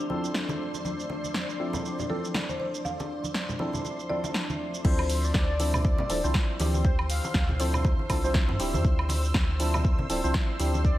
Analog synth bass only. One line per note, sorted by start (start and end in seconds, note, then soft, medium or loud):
4.85 5.31 D2 loud
5.35 5.95 D2 medium
6.10 6.21 D1 medium
6.24 6.33 C2 medium
6.60 7.20 D2 medium
7.35 7.95 D2 medium
8.10 8.50 C2 medium
8.49 8.58 G2 medium
8.60 8.75 D1 medium
8.74 8.83 F2 loud
8.85 9.31 D2 loud
9.35 9.95 D2 medium
10.10 10.21 D1 medium
10.24 10.33 C2 medium
10.60 10.98 D2 medium